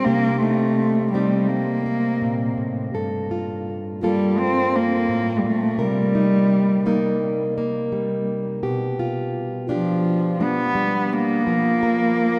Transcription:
0.00 2.61 G3 medium
0.04 2.93 C3 medium
0.04 0.41 A#3 medium
0.04 1.15 G4 soft
0.40 1.11 A3 medium
0.40 1.13 D#4 soft
1.12 1.50 G3 medium
1.12 1.85 C4 soft
1.12 2.90 D#4 soft
1.12 2.94 G4 soft
1.48 2.57 A#3 medium
1.86 2.89 C4 soft
2.22 2.57 A#2 medium
2.58 2.93 A2 soft
2.94 5.08 G2 medium
2.94 4.02 A4 soft
3.31 4.02 F4 soft
4.03 4.40 G3 medium
4.03 4.73 A#3 soft
4.03 5.77 F4 soft
4.03 5.77 A4 soft
4.38 4.77 C4 medium
4.76 5.40 A#3 medium
5.09 5.43 A2 medium
5.39 5.47 G3 soft
5.44 5.79 A#2 soft
5.44 5.84 A3 medium
5.78 8.62 C3 medium
5.78 6.86 A#4 soft
5.82 7.23 G3 medium
6.15 6.85 D#4 medium
6.86 7.56 A#3 soft
6.86 8.59 D#4 soft
6.86 8.59 A#4 soft
7.58 8.63 A#3 soft
7.92 8.59 G3 medium
8.63 11.41 B2 medium
8.63 9.69 G4 soft
8.99 9.70 F4 medium
9.69 10.43 F3 medium
9.69 10.39 D4 soft
9.69 12.39 F4 soft
9.69 11.46 G4 medium
10.41 11.14 B3 medium
10.41 11.42 D4 soft
10.75 11.41 G3 medium
11.13 12.39 A#3 medium
11.47 12.39 F3 medium
11.47 11.82 A#4 soft
11.83 12.39 A#4 medium

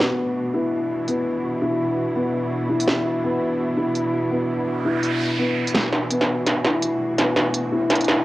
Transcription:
0.00 8.25 B2 medium
0.00 8.25 E3 medium
0.00 1.20 A3 medium
0.00 1.08 B3 medium
0.00 8.25 D4 medium
0.00 0.86 F#4 medium
0.00 5.91 F#4 medium
0.00 5.95 F#4 medium
0.54 0.71 E4 medium
0.75 7.34 E4 medium
1.08 1.25 B3 medium
1.08 7.32 B3 medium
1.08 open hi-hat soft
1.62 1.79 E4 medium
2.16 2.33 B3 medium
2.69 2.87 E4 medium
2.80 open hi-hat medium
2.88 snare medium
3.24 3.41 B3 medium
3.77 3.95 E4 medium
3.95 open hi-hat soft
4.31 4.48 B3 medium
4.49 noise sweep medium
4.85 5.02 E4 medium
5.03 open hi-hat soft
5.39 5.56 B3 medium
5.67 open hi-hat medium
5.75 snare medium
5.92 8.25 F#4 medium
5.92 snare soft
5.92 riser medium
6.10 6.28 B3 medium
6.10 closed hi-hat medium
6.21 snare soft
6.37 8.25 A3 medium
6.37 8.25 F#4 medium
6.46 snare soft
6.46 closed hi-hat medium
6.64 6.82 E4 medium
6.64 snare medium
6.82 closed hi-hat medium
7.18 7.36 B3 medium
7.18 snare medium
7.18 closed hi-hat medium
7.36 snare medium
7.54 closed hi-hat medium
7.72 7.90 E4 medium
7.90 snare medium
7.90 closed hi-hat medium
7.95 closed hi-hat medium
8.01 closed hi-hat soft
8.04 snare medium
8.04 closed hi-hat soft

